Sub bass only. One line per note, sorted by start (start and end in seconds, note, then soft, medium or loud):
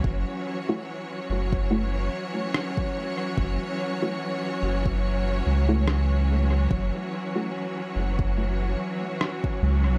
0.04 0.25 F#1 medium
1.30 2.09 F#1 medium
3.38 3.58 F#1 medium
4.62 5.42 F#1 medium
5.46 6.68 C#2 medium
6.71 6.91 F#1 medium
7.96 8.76 F#1 medium
9.62 9.87 C#2 medium
9.86 9.98 B1 medium